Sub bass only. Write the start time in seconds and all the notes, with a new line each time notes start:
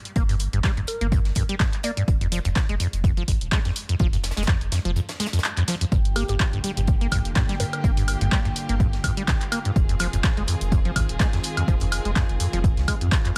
0.16 G1
0.53 G1
0.77 G1
1.01 G1
2.08 F1
2.45 F1
2.69 F1
2.93 F1
3.28 G#1
3.41 D#1
4.00 F1
4.37 F1
4.61 F1
4.85 F1
5.92 G1
6.29 G1
6.53 G1
6.77 G1
7.12 A#1
7.25 F1
7.84 G1
8.21 G1
8.45 G1
8.69 G1
9.76 F1
10.13 F1
10.37 F1
10.61 F1
10.96 G#1
11.09 D#1
11.68 F1
12.05 F1
12.29 F1
12.53 F1
12.77 C2
13.01 F2